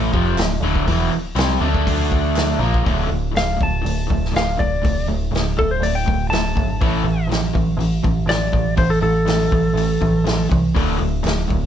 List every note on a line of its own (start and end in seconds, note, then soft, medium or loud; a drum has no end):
0.00 0.12 A1 loud
0.00 0.12 A2 medium
0.00 0.12 E3 medium
0.00 0.13 A3 loud
0.13 0.36 F1 loud
0.13 0.37 F2 medium
0.13 0.37 C3 medium
0.13 0.37 F3 loud
0.13 kick medium
0.37 0.60 D1 medium
0.37 0.58 D2 medium
0.37 0.58 A2 medium
0.37 snare loud
0.37 clap loud
0.37 open hi-hat medium
0.60 0.85 D1 loud
0.60 0.87 D2 loud
0.60 0.87 A2 loud
0.60 0.87 D3 loud
0.75 kick medium
0.87 1.11 E1 loud
0.87 1.10 E2 loud
0.87 1.12 B2 medium
0.87 1.12 E3 loud
0.87 kick medium
0.87 open hi-hat medium
1.11 1.35 D1 soft
1.11 muted overdriven electric guitar stroke medium
1.35 1.59 C2 medium
1.35 1.60 C3 medium
1.35 1.60 G3 loud
1.35 1.60 C4 loud
1.35 snare loud
1.35 clap loud
1.35 open hi-hat medium
1.60 2.56 D2 medium
1.60 2.59 D3 medium
1.60 2.59 A3 loud
1.60 2.59 D4 loud
1.74 kick medium
1.87 kick loud
1.87 open hi-hat medium
2.12 kick medium
2.36 snare loud
2.36 clap loud
2.36 open hi-hat medium
2.59 2.83 A#1 loud
2.59 2.83 A#2 medium
2.59 2.83 F3 loud
2.59 2.84 A#3 loud
2.74 kick medium
2.84 3.09 D1 loud
2.84 3.05 D2 medium
2.84 3.06 A2 medium
2.84 3.08 D3 medium
2.84 kick loud
2.84 open hi-hat soft
3.07 3.33 D1 medium
3.07 3.31 D2 medium
3.07 3.30 A2 medium
3.11 3.33 D2 medium
3.32 3.58 D1 medium
3.32 3.56 D2 medium
3.32 3.56 A2 medium
3.36 3.58 A2 medium
3.36 3.60 F5 medium
3.36 snare loud
3.36 open hi-hat medium
3.57 3.81 D2 medium
3.57 3.81 A2 medium
3.57 kick medium
3.61 3.83 D1 medium
3.61 3.83 A2 medium
3.61 4.34 A5 medium
3.82 4.08 D1 medium
3.82 4.05 D2 medium
3.82 4.06 A2 medium
3.86 4.08 A2 medium
3.86 open hi-hat medium
4.07 4.33 D1 loud
4.07 4.30 D2 medium
4.07 4.31 A2 medium
4.07 kick medium
4.25 snare soft
4.32 4.57 D1 medium
4.32 4.55 D2 medium
4.32 4.55 A2 medium
4.32 open hi-hat medium
4.36 4.59 F5 medium
4.36 snare loud
4.57 4.83 D1 medium
4.57 4.80 D2 medium
4.57 4.80 A2 medium
4.57 5.07 D5 medium
4.57 kick medium
4.82 5.07 D1 medium
4.82 5.05 D2 medium
4.82 5.06 A2 medium
4.82 kick loud
4.82 open hi-hat medium
5.08 5.31 D1 medium
5.08 5.30 D2 medium
5.08 5.31 A2 medium
5.31 5.55 D1 medium
5.31 5.54 D2 medium
5.31 5.55 A2 medium
5.31 open hi-hat medium
5.36 snare loud
5.57 5.79 D1 medium
5.57 5.80 D2 medium
5.57 5.80 A2 medium
5.57 5.70 A4 medium
5.57 kick medium
5.71 5.83 C5 medium
5.80 6.04 D1 loud
5.80 6.04 D2 medium
5.80 6.05 A2 medium
5.80 5.95 D5 medium
5.80 open hi-hat medium
5.95 6.30 G5 medium
6.05 6.29 D1 medium
6.05 6.28 D2 medium
6.05 6.29 A2 medium
6.05 kick medium
6.29 6.53 D1 medium
6.29 6.54 D2 medium
6.29 6.54 A2 loud
6.29 7.27 A5 medium
6.29 open hi-hat medium
6.33 snare loud
6.55 6.80 G1 medium
6.55 6.78 D2 medium
6.55 6.78 A2 medium
6.55 kick medium
6.81 7.02 A1 medium
6.81 7.03 A2 medium
6.81 7.04 E3 medium
6.81 7.04 A3 loud
6.81 kick loud
6.81 open hi-hat medium
7.03 7.26 A1 medium
7.03 7.27 A2 medium
7.03 7.28 E3 medium
7.27 7.52 A1 medium
7.27 7.52 A2 medium
7.27 7.52 E3 medium
7.31 snare loud
7.31 open hi-hat medium
7.53 7.76 A1 medium
7.53 7.77 A2 medium
7.53 7.77 E3 medium
7.53 kick medium
7.77 8.01 A1 loud
7.77 8.02 A2 medium
7.77 8.02 E3 medium
7.77 open hi-hat medium
8.04 8.25 A1 medium
8.04 8.27 A2 medium
8.04 8.26 E3 medium
8.04 kick medium
8.26 8.50 A1 loud
8.26 8.51 A2 medium
8.26 8.51 E3 medium
8.26 8.77 D5 loud
8.26 open hi-hat medium
8.30 snare loud
8.53 8.76 A1 medium
8.53 8.75 A2 medium
8.53 8.76 E3 medium
8.53 kick medium
8.77 9.01 A1 medium
8.77 9.00 A2 medium
8.77 9.00 E3 medium
8.77 8.90 C5 medium
8.77 kick loud
8.77 open hi-hat medium
8.90 9.01 A4 medium
9.01 9.25 A1 medium
9.01 9.24 A2 medium
9.01 9.25 E3 medium
9.01 10.47 A4 loud
9.25 9.49 A1 medium
9.25 9.49 A2 medium
9.25 9.49 E3 medium
9.25 snare loud
9.25 open hi-hat medium
9.52 9.73 A1 medium
9.52 9.75 A2 medium
9.52 9.75 E3 medium
9.52 kick medium
9.74 9.98 A1 medium
9.74 9.99 A2 medium
9.74 open hi-hat medium
9.78 10.00 E3 medium
10.01 10.23 A1 loud
10.01 10.23 A2 medium
10.01 10.24 E3 medium
10.01 kick medium
10.24 10.48 A1 medium
10.24 10.48 A2 medium
10.24 10.49 E3 medium
10.24 snare loud
10.24 open hi-hat medium
10.49 10.74 C2 medium
10.49 10.72 A2 medium
10.49 10.72 E3 medium
10.49 kick medium
10.74 10.99 D1 medium
10.74 10.98 D2 medium
10.74 10.98 A2 medium
10.74 10.98 D3 medium
10.74 kick medium
10.74 open hi-hat medium
11.00 11.22 D1 loud
11.00 11.22 D2 medium
11.00 11.22 A2 medium
11.23 11.47 D1 loud
11.23 11.46 D2 medium
11.23 11.46 A2 loud
11.23 snare loud
11.23 clap medium
11.23 open hi-hat medium
11.48 11.66 D1 medium
11.48 11.66 D2 medium
11.48 11.66 A2 medium
11.48 kick medium